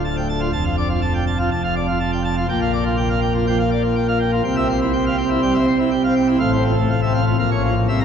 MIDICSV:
0, 0, Header, 1, 2, 480
1, 0, Start_track
1, 0, Tempo, 490196
1, 519, Time_signature, 4, 2, 24, 8
1, 7881, End_track
2, 0, Start_track
2, 0, Title_t, "Pipe organ"
2, 0, Program_c, 0, 19
2, 0, Note_on_c, 0, 26, 98
2, 0, Note_on_c, 0, 38, 93
2, 43, Note_on_c, 0, 81, 73
2, 150, Note_off_c, 0, 81, 0
2, 166, Note_on_c, 0, 79, 65
2, 266, Note_off_c, 0, 79, 0
2, 285, Note_on_c, 0, 81, 88
2, 390, Note_off_c, 0, 81, 0
2, 396, Note_on_c, 0, 65, 82
2, 474, Note_off_c, 0, 26, 0
2, 474, Note_off_c, 0, 38, 0
2, 499, Note_off_c, 0, 65, 0
2, 517, Note_on_c, 0, 41, 110
2, 517, Note_on_c, 0, 81, 127
2, 518, Note_on_c, 0, 29, 105
2, 624, Note_off_c, 0, 81, 0
2, 635, Note_on_c, 0, 77, 85
2, 742, Note_off_c, 0, 77, 0
2, 756, Note_on_c, 0, 74, 80
2, 863, Note_off_c, 0, 74, 0
2, 871, Note_on_c, 0, 65, 92
2, 980, Note_off_c, 0, 65, 0
2, 994, Note_on_c, 0, 81, 75
2, 1101, Note_off_c, 0, 81, 0
2, 1118, Note_on_c, 0, 79, 78
2, 1218, Note_off_c, 0, 79, 0
2, 1242, Note_on_c, 0, 81, 80
2, 1345, Note_off_c, 0, 81, 0
2, 1359, Note_on_c, 0, 65, 81
2, 1463, Note_off_c, 0, 29, 0
2, 1463, Note_off_c, 0, 41, 0
2, 1463, Note_off_c, 0, 65, 0
2, 1482, Note_on_c, 0, 29, 93
2, 1482, Note_on_c, 0, 41, 89
2, 1482, Note_on_c, 0, 81, 96
2, 1584, Note_off_c, 0, 81, 0
2, 1609, Note_on_c, 0, 77, 92
2, 1708, Note_off_c, 0, 77, 0
2, 1721, Note_on_c, 0, 74, 89
2, 1824, Note_off_c, 0, 74, 0
2, 1842, Note_on_c, 0, 65, 74
2, 1944, Note_off_c, 0, 65, 0
2, 1959, Note_on_c, 0, 81, 88
2, 2061, Note_off_c, 0, 81, 0
2, 2080, Note_on_c, 0, 79, 66
2, 2176, Note_off_c, 0, 79, 0
2, 2197, Note_on_c, 0, 81, 91
2, 2299, Note_off_c, 0, 81, 0
2, 2323, Note_on_c, 0, 65, 88
2, 2401, Note_off_c, 0, 29, 0
2, 2401, Note_off_c, 0, 41, 0
2, 2417, Note_off_c, 0, 65, 0
2, 2438, Note_on_c, 0, 79, 127
2, 2440, Note_on_c, 0, 34, 107
2, 2440, Note_on_c, 0, 46, 121
2, 2539, Note_off_c, 0, 79, 0
2, 2559, Note_on_c, 0, 77, 94
2, 2660, Note_off_c, 0, 77, 0
2, 2672, Note_on_c, 0, 74, 91
2, 2776, Note_off_c, 0, 74, 0
2, 2798, Note_on_c, 0, 65, 81
2, 2900, Note_off_c, 0, 65, 0
2, 2912, Note_on_c, 0, 79, 86
2, 3016, Note_off_c, 0, 79, 0
2, 3032, Note_on_c, 0, 77, 89
2, 3132, Note_off_c, 0, 77, 0
2, 3148, Note_on_c, 0, 79, 82
2, 3255, Note_off_c, 0, 79, 0
2, 3277, Note_on_c, 0, 65, 90
2, 3380, Note_off_c, 0, 65, 0
2, 3398, Note_on_c, 0, 79, 92
2, 3399, Note_on_c, 0, 53, 78
2, 3501, Note_off_c, 0, 79, 0
2, 3520, Note_on_c, 0, 77, 99
2, 3538, Note_off_c, 0, 53, 0
2, 3622, Note_off_c, 0, 77, 0
2, 3635, Note_on_c, 0, 74, 88
2, 3740, Note_off_c, 0, 74, 0
2, 3759, Note_on_c, 0, 65, 79
2, 3862, Note_off_c, 0, 65, 0
2, 3873, Note_on_c, 0, 79, 89
2, 3978, Note_off_c, 0, 79, 0
2, 3997, Note_on_c, 0, 77, 72
2, 4095, Note_off_c, 0, 77, 0
2, 4113, Note_on_c, 0, 79, 85
2, 4218, Note_off_c, 0, 79, 0
2, 4234, Note_on_c, 0, 65, 83
2, 4316, Note_off_c, 0, 46, 0
2, 4317, Note_off_c, 0, 34, 0
2, 4333, Note_off_c, 0, 65, 0
2, 4352, Note_on_c, 0, 36, 111
2, 4352, Note_on_c, 0, 48, 112
2, 4352, Note_on_c, 0, 79, 127
2, 4457, Note_off_c, 0, 79, 0
2, 4466, Note_on_c, 0, 76, 86
2, 4512, Note_on_c, 0, 60, 77
2, 4573, Note_off_c, 0, 76, 0
2, 4595, Note_on_c, 0, 72, 93
2, 4652, Note_off_c, 0, 60, 0
2, 4698, Note_off_c, 0, 72, 0
2, 4717, Note_on_c, 0, 64, 85
2, 4820, Note_off_c, 0, 64, 0
2, 4830, Note_on_c, 0, 79, 81
2, 4935, Note_off_c, 0, 79, 0
2, 4958, Note_on_c, 0, 77, 72
2, 4999, Note_on_c, 0, 60, 85
2, 5055, Note_off_c, 0, 77, 0
2, 5071, Note_on_c, 0, 79, 81
2, 5137, Note_off_c, 0, 60, 0
2, 5176, Note_off_c, 0, 79, 0
2, 5189, Note_on_c, 0, 64, 81
2, 5295, Note_off_c, 0, 64, 0
2, 5312, Note_on_c, 0, 79, 84
2, 5313, Note_on_c, 0, 55, 75
2, 5416, Note_off_c, 0, 79, 0
2, 5432, Note_on_c, 0, 76, 97
2, 5452, Note_off_c, 0, 55, 0
2, 5468, Note_on_c, 0, 60, 78
2, 5536, Note_off_c, 0, 76, 0
2, 5549, Note_on_c, 0, 72, 80
2, 5609, Note_off_c, 0, 60, 0
2, 5654, Note_off_c, 0, 72, 0
2, 5674, Note_on_c, 0, 64, 75
2, 5777, Note_off_c, 0, 64, 0
2, 5788, Note_on_c, 0, 79, 78
2, 5894, Note_off_c, 0, 79, 0
2, 5914, Note_on_c, 0, 77, 67
2, 5951, Note_on_c, 0, 60, 73
2, 6013, Note_off_c, 0, 77, 0
2, 6035, Note_on_c, 0, 79, 91
2, 6092, Note_off_c, 0, 60, 0
2, 6139, Note_off_c, 0, 79, 0
2, 6152, Note_on_c, 0, 64, 86
2, 6230, Note_off_c, 0, 36, 0
2, 6230, Note_off_c, 0, 48, 0
2, 6252, Note_off_c, 0, 64, 0
2, 6264, Note_on_c, 0, 33, 101
2, 6266, Note_on_c, 0, 77, 125
2, 6267, Note_on_c, 0, 45, 108
2, 6374, Note_off_c, 0, 77, 0
2, 6389, Note_on_c, 0, 72, 88
2, 6429, Note_on_c, 0, 60, 74
2, 6496, Note_off_c, 0, 72, 0
2, 6505, Note_on_c, 0, 65, 75
2, 6572, Note_off_c, 0, 60, 0
2, 6614, Note_off_c, 0, 65, 0
2, 6632, Note_on_c, 0, 57, 77
2, 6738, Note_off_c, 0, 57, 0
2, 6758, Note_on_c, 0, 77, 72
2, 6861, Note_off_c, 0, 77, 0
2, 6876, Note_on_c, 0, 76, 68
2, 6916, Note_on_c, 0, 60, 75
2, 6976, Note_off_c, 0, 76, 0
2, 6991, Note_on_c, 0, 77, 68
2, 7056, Note_off_c, 0, 60, 0
2, 7098, Note_off_c, 0, 77, 0
2, 7112, Note_on_c, 0, 65, 73
2, 7201, Note_off_c, 0, 33, 0
2, 7202, Note_off_c, 0, 45, 0
2, 7213, Note_off_c, 0, 65, 0
2, 7234, Note_on_c, 0, 46, 86
2, 7234, Note_on_c, 0, 77, 105
2, 7236, Note_on_c, 0, 34, 94
2, 7341, Note_off_c, 0, 77, 0
2, 7357, Note_on_c, 0, 73, 74
2, 7401, Note_on_c, 0, 61, 71
2, 7463, Note_off_c, 0, 73, 0
2, 7484, Note_on_c, 0, 65, 76
2, 7542, Note_off_c, 0, 61, 0
2, 7588, Note_off_c, 0, 65, 0
2, 7600, Note_on_c, 0, 53, 69
2, 7701, Note_off_c, 0, 53, 0
2, 7704, Note_off_c, 0, 46, 0
2, 7705, Note_off_c, 0, 34, 0
2, 7719, Note_on_c, 0, 76, 70
2, 7721, Note_on_c, 0, 36, 77
2, 7721, Note_on_c, 0, 48, 84
2, 7827, Note_off_c, 0, 76, 0
2, 7835, Note_on_c, 0, 82, 93
2, 7881, Note_off_c, 0, 36, 0
2, 7881, Note_off_c, 0, 48, 0
2, 7881, Note_off_c, 0, 82, 0
2, 7881, End_track
0, 0, End_of_file